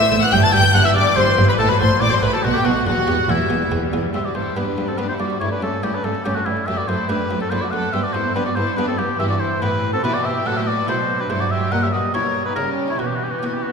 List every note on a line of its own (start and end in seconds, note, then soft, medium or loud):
0.00 0.11 E3 medium
0.00 0.11 B3 medium
0.00 0.21 E5 loud
0.00 0.22 E5 medium
0.00 0.22 E6 loud
0.11 0.19 A1 medium
0.11 0.20 A2 medium
0.11 0.31 A2 medium
0.11 0.22 A3 medium
0.11 0.33 A3 soft
0.21 0.33 E3 medium
0.21 0.26 F#5 medium
0.21 0.32 F#5 medium
0.21 0.33 F#6 loud
0.32 0.40 G1 medium
0.32 0.41 G2 medium
0.32 0.52 G2 medium
0.32 0.42 G3 medium
0.32 0.36 G5 loud
0.32 0.45 G5 loud
0.32 0.43 G6 loud
0.42 0.54 E3 medium
0.42 0.53 A5 medium
0.42 0.54 A5 medium
0.42 0.54 A6 loud
0.53 0.61 G1 medium
0.53 0.62 G2 medium
0.53 0.73 G2 medium
0.53 0.64 G3 medium
0.53 0.76 E4 medium
0.53 0.73 G5 loud
0.53 0.74 G5 medium
0.53 0.74 G6 loud
0.63 0.74 E3 medium
0.73 0.83 G1 medium
0.73 0.94 G2 medium
0.73 0.83 G2 medium
0.73 0.84 G3 medium
0.73 0.97 B3 medium
0.73 0.87 F#5 loud
0.73 0.85 F#5 loud
0.73 0.86 F#6 loud
0.84 0.95 E3 medium
0.84 0.95 E5 medium
0.84 0.96 E6 medium
0.95 1.03 G1 medium
0.95 1.04 G2 medium
0.95 1.15 G2 medium
0.95 1.06 G3 medium
0.95 1.18 D5 medium
0.95 1.16 D5 medium
0.95 1.16 D6 loud
1.06 1.17 E3 medium
1.16 1.24 G1 medium
1.16 1.25 G2 medium
1.16 1.36 G2 medium
1.16 1.27 G3 medium
1.16 1.38 A3 soft
1.16 1.50 C5 medium
1.16 1.25 C5 loud
1.16 1.49 C6 loud
1.27 1.38 E3 medium
1.37 1.45 G1 medium
1.37 1.46 G2 medium
1.37 1.57 G2 medium
1.37 1.48 G3 medium
1.37 1.59 B3 medium
1.48 1.59 E3 medium
1.48 1.58 B4 medium
1.48 1.59 B4 medium
1.48 1.53 B5 medium
1.58 1.66 A1 medium
1.58 1.67 A2 medium
1.58 1.79 A2 medium
1.58 1.69 A3 medium
1.58 1.71 A4 medium
1.58 1.70 A4 medium
1.58 1.69 A5 loud
1.68 1.80 F#3 medium
1.68 1.81 B4 medium
1.68 1.80 B4 medium
1.68 1.80 B5 medium
1.79 1.88 A1 medium
1.79 1.89 A2 medium
1.79 1.99 A2 medium
1.79 1.90 A3 medium
1.79 2.02 F#4 medium
1.79 2.02 C5 medium
1.79 1.89 C5 medium
1.79 2.00 C6 loud
1.91 2.01 F#3 medium
2.00 2.09 A1 medium
2.00 2.10 A2 medium
2.00 2.21 A2 medium
2.00 2.11 A3 medium
2.00 2.24 C4 soft
2.00 2.12 D5 medium
2.00 2.12 D6 loud
2.11 2.22 F#3 medium
2.11 2.24 C5 medium
2.11 2.23 C5 medium
2.11 2.22 C6 medium
2.22 2.30 A1 medium
2.22 2.42 A2 medium
2.22 2.31 A2 medium
2.22 2.33 A3 medium
2.22 2.44 A3 medium
2.22 2.32 B4 medium
2.22 2.33 B4 medium
2.22 2.33 B5 medium
2.33 2.44 F#3 medium
2.33 2.45 A4 medium
2.33 2.44 A4 medium
2.33 2.44 A5 medium
2.43 2.52 B1 medium
2.43 2.52 B2 medium
2.43 2.63 B2 medium
2.43 2.54 B3 medium
2.43 2.56 F#4 medium
2.43 2.55 F#4 medium
2.43 2.55 F#5 loud
2.54 2.65 A3 medium
2.54 2.66 G4 medium
2.54 2.65 G5 medium
2.64 2.73 B1 medium
2.64 2.84 B2 medium
2.64 2.73 B2 medium
2.64 2.75 B3 medium
2.64 2.81 B3 soft
2.64 2.81 D#4 medium
2.64 2.86 F#4 medium
2.64 2.86 F#5 medium
2.76 2.87 A3 medium
2.86 2.94 E1 medium
2.86 2.94 E2 medium
2.86 3.06 E2 medium
2.86 2.97 E3 medium
2.86 3.31 F#4 medium
2.86 3.29 F#4 medium
2.86 3.29 F#5 medium
2.98 3.08 G3 medium
3.07 3.15 E1 medium
3.07 3.27 E2 medium
3.07 3.16 E2 medium
3.07 3.19 E3 medium
3.07 3.30 G4 medium
3.18 3.29 G3 medium
3.28 3.36 E1 medium
3.28 3.37 E2 medium
3.28 3.49 E2 medium
3.28 3.39 E3 medium
3.28 3.72 E4 medium
3.28 3.52 E4 soft
3.28 3.72 E5 medium
3.39 3.50 G3 medium
3.49 3.58 E1 medium
3.49 3.69 E2 medium
3.49 3.59 E2 medium
3.49 3.61 E3 medium
3.49 3.73 B3 soft
3.61 3.72 G3 medium
3.71 3.79 E1 medium
3.71 3.80 E2 medium
3.71 3.91 E2 medium
3.71 3.82 E3 medium
3.71 3.93 C4 soft
3.83 3.94 G3 medium
3.93 4.01 E1 medium
3.93 4.02 E2 medium
3.93 4.13 E2 medium
3.93 4.04 E3 medium
3.93 4.15 B3 soft
4.04 4.14 G3 medium
4.13 4.34 G2 soft
4.13 4.23 G2 soft
4.13 4.34 G3 soft
4.13 4.19 G4 medium
4.13 4.24 C5 medium
4.13 4.26 E5 medium
4.25 4.36 F#4 soft
4.25 4.35 B4 soft
4.25 4.37 D5 soft
4.35 4.54 G2 soft
4.35 4.44 G2 soft
4.35 4.56 G3 soft
4.35 4.57 E4 soft
4.35 4.56 A4 medium
4.35 4.58 C5 medium
4.55 4.76 G2 soft
4.55 4.65 G2 soft
4.55 4.78 G3 soft
4.55 4.87 B3 soft
4.55 4.88 D4 medium
4.55 4.88 D4 soft
4.55 4.88 G4 soft
4.55 4.90 B4 medium
4.78 4.86 G2 soft
4.78 4.97 G2 soft
4.78 4.99 G3 soft
4.89 4.99 C4 soft
4.89 4.99 F#4 soft
4.89 4.99 A4 medium
4.98 5.18 G2 soft
4.98 5.07 G2 soft
4.98 5.20 G3 soft
4.98 5.29 B3 soft
4.98 5.29 D4 soft
4.98 5.10 D4 medium
4.98 5.10 G4 medium
4.98 5.08 B4 medium
5.09 5.20 E4 soft
5.09 5.20 A4 soft
5.09 5.14 C5 medium
5.20 5.39 G2 soft
5.20 5.28 G2 soft
5.20 5.41 G3 soft
5.20 5.42 F#4 medium
5.20 5.29 B4 soft
5.20 5.39 D5 medium
5.40 5.49 G2 soft
5.40 5.61 G2 soft
5.40 5.62 A3 soft
5.40 5.52 E4 medium
5.40 5.51 A4 soft
5.40 5.51 C#5 medium
5.52 5.63 D4 soft
5.52 5.63 G4 soft
5.52 5.62 B4 medium
5.62 5.70 G2 soft
5.62 5.82 G2 soft
5.62 5.82 A3 soft
5.62 5.83 C#4 soft
5.62 5.84 F#4 medium
5.62 5.85 A4 medium
5.83 6.03 G2 soft
5.83 5.91 G2 soft
5.83 6.03 A3 soft
5.83 6.14 A3 soft
5.83 6.14 C#4 soft
5.83 5.94 C#4 soft
5.83 5.94 E4 soft
5.83 5.96 G4 medium
5.93 6.05 D4 soft
5.93 6.04 G4 soft
5.93 6.06 B4 medium
6.04 6.12 G2 soft
6.04 6.24 G2 soft
6.04 6.24 A3 soft
6.04 6.13 C#4 soft
6.04 6.25 F#4 soft
6.04 6.23 A4 medium
6.24 6.33 G2 soft
6.24 6.45 G2 soft
6.24 6.45 A3 soft
6.24 6.56 A3 soft
6.24 6.30 C#4 medium
6.24 6.56 C#4 soft
6.24 6.36 E4 medium
6.24 6.36 G4 medium
6.35 6.40 A3 soft
6.35 6.41 D4 soft
6.35 6.47 F#4 medium
6.45 6.65 G2 soft
6.45 6.55 G2 soft
6.45 6.54 G3 soft
6.45 6.65 A3 soft
6.45 6.68 C#4 soft
6.45 6.68 E4 medium
6.66 6.75 F#2 medium
6.66 6.87 F#2 soft
6.66 6.88 A3 soft
6.66 6.78 G4 medium
6.66 6.78 C5 medium
6.66 6.79 E5 medium
6.77 6.89 F#4 soft
6.77 6.89 B4 soft
6.77 6.90 D5 medium
6.87 6.96 F#2 soft
6.87 7.08 F#2 soft
6.87 7.08 A3 soft
6.87 7.09 E4 medium
6.87 7.09 A4 medium
6.87 7.10 C5 medium
7.08 7.17 F#2 soft
7.08 7.29 F#2 soft
7.08 7.29 A3 soft
7.08 7.40 A3 soft
7.08 7.18 D4 medium
7.08 7.40 D4 soft
7.08 7.40 G4 medium
7.08 7.41 B4 medium
7.30 7.38 F#2 medium
7.30 7.50 F#2 soft
7.30 7.50 A3 soft
7.41 7.45 C4 soft
7.41 7.51 F#4 medium
7.41 7.52 A4 medium
7.50 7.59 F#2 soft
7.50 7.71 F#2 soft
7.50 7.71 A3 soft
7.50 7.82 A3 soft
7.50 7.82 D4 soft
7.50 7.62 E4 medium
7.50 7.62 A4 medium
7.50 7.63 C5 medium
7.60 7.73 F#4 soft
7.60 7.72 B4 soft
7.60 7.72 D5 medium
7.71 7.80 F#2 medium
7.71 7.92 F#2 soft
7.71 7.93 A3 soft
7.71 7.93 A4 medium
7.71 7.93 D5 medium
7.71 7.94 F#5 medium
7.92 8.01 G2 medium
7.92 8.13 G2 soft
7.92 8.13 B3 soft
7.92 7.98 G4 medium
7.92 8.03 C5 medium
7.92 8.05 E5 medium
8.02 8.15 F#4 medium
8.02 8.14 B4 medium
8.02 8.15 D5 medium
8.13 8.22 G2 medium
8.13 8.34 G2 soft
8.13 8.33 B3 soft
8.13 8.36 E4 medium
8.13 8.35 A4 medium
8.13 8.34 C5 medium
8.34 8.43 G2 medium
8.34 8.55 G2 soft
8.34 8.55 B3 soft
8.34 8.66 B3 soft
8.34 8.40 D4 medium
8.34 8.67 D4 soft
8.34 8.46 G4 medium
8.34 8.45 B4 medium
8.45 8.51 F#4 medium
8.45 8.56 B4 medium
8.45 8.57 D5 medium
8.56 8.64 G2 medium
8.56 8.76 G2 soft
8.56 8.77 B3 soft
8.56 8.78 E4 medium
8.56 8.77 A4 medium
8.56 8.78 C5 medium
8.76 8.85 G2 soft
8.76 8.97 G2 soft
8.76 8.96 B3 medium
8.76 9.08 B3 soft
8.76 8.88 D4 medium
8.76 9.09 D4 soft
8.76 8.87 G4 medium
8.76 8.87 B4 medium
8.87 8.99 C4 medium
8.87 8.98 F#4 medium
8.87 8.99 A4 medium
8.97 9.06 G2 medium
8.97 9.18 G2 soft
8.97 9.19 B3 medium
8.97 9.06 B3 medium
8.97 9.19 E4 medium
8.97 9.19 G4 medium
9.18 9.58 G2 medium
9.18 9.58 G2 soft
9.18 9.58 E3 medium
9.18 9.30 G4 medium
9.18 9.27 B4 medium
9.18 9.24 E5 medium
9.28 9.35 F#4 medium
9.28 9.39 B4 medium
9.28 9.42 D5 medium
9.38 9.60 E4 medium
9.38 9.46 A4 medium
9.38 9.63 C5 medium
9.60 10.02 A2 medium
9.60 10.00 A2 soft
9.60 10.01 E3 soft
9.60 9.93 B3 soft
9.60 9.69 E4 medium
9.60 9.93 E4 soft
9.60 9.92 G4 medium
9.60 9.93 B4 medium
9.92 10.03 C4 soft
9.92 10.03 F#4 medium
9.92 10.03 A4 medium
10.02 10.45 B2 medium
10.02 10.42 B2 soft
10.02 10.44 E3 medium
10.02 10.34 B3 soft
10.02 10.13 E4 medium
10.02 10.35 E4 soft
10.02 10.13 G4 medium
10.02 10.16 B4 medium
10.13 10.24 F#4 medium
10.13 10.24 B4 medium
10.13 10.27 D5 medium
10.23 10.45 G4 medium
10.23 10.31 C5 medium
10.23 10.48 E5 medium
10.44 10.86 A2 medium
10.44 10.84 A2 soft
10.44 10.85 F#3 soft
10.44 10.56 A4 medium
10.44 10.54 C5 medium
10.44 10.58 F#5 medium
10.55 10.66 G4 medium
10.55 10.66 C5 medium
10.55 10.69 E5 medium
10.65 10.87 F#4 medium
10.65 10.87 B4 medium
10.65 10.88 D5 medium
10.86 11.28 B2 medium
10.86 11.26 B2 soft
10.86 11.28 F#3 soft
10.86 11.18 A3 soft
10.86 10.95 E4 medium
10.86 11.19 E4 soft
10.86 11.19 A4 medium
10.86 11.22 C5 medium
11.19 11.29 D4 soft
11.19 11.24 G4 medium
11.19 11.31 B4 medium
11.30 11.68 G2 soft
11.30 11.71 G2 medium
11.30 11.71 F#3 medium
11.30 11.60 A3 soft
11.30 11.41 E4 medium
11.30 11.61 E4 soft
11.30 11.41 A4 medium
11.30 11.42 C5 medium
11.41 11.45 F#4 medium
11.41 11.51 B4 medium
11.41 11.53 D5 medium
11.51 11.72 G4 medium
11.51 11.60 C5 medium
11.51 11.73 E5 medium
11.71 12.13 A#2 medium
11.71 12.10 A#2 soft
11.71 12.13 G3 medium
11.71 11.83 A#4 medium
11.71 11.82 D#5 medium
11.71 11.84 F#5 medium
11.83 11.87 G4 medium
11.83 11.88 C#5 medium
11.83 11.94 E5 medium
11.92 12.02 F#4 medium
11.92 12.01 B4 medium
11.92 12.13 D#5 medium
12.13 12.55 B2 soft
12.13 12.53 B2 soft
12.13 12.55 G3 soft
12.13 12.45 C#4 soft
12.13 12.23 E4 medium
12.13 12.45 E4 soft
12.13 12.45 A#4 medium
12.13 12.45 C#5 medium
12.45 12.57 D#4 soft
12.45 12.51 G4 soft
12.45 12.55 B4 medium
12.55 12.98 C#3 medium
12.55 12.95 C#3 soft
12.55 12.98 G3 medium
12.55 12.87 C#4 soft
12.55 12.89 C#4 medium
12.55 12.87 E4 soft
12.55 12.88 G4 medium
12.55 12.70 A#4 medium
12.88 12.99 E4 soft
12.88 13.00 A#4 medium
12.88 13.01 C#5 medium
12.99 13.41 B2 medium
12.99 13.38 B2 soft
12.99 13.72 E3 soft
12.99 13.72 B3 medium
12.99 13.72 B3 soft
12.99 13.09 F#4 soft
13.07 13.17 G4 soft
13.15 13.25 F#4 soft
13.24 13.33 G4 medium
13.31 13.41 F#4 soft
13.39 13.72 B3 soft
13.39 13.48 G4 soft
13.44 13.72 E4 soft
13.44 13.55 F#4 soft
13.54 13.64 G4 medium
13.63 13.72 F#4 medium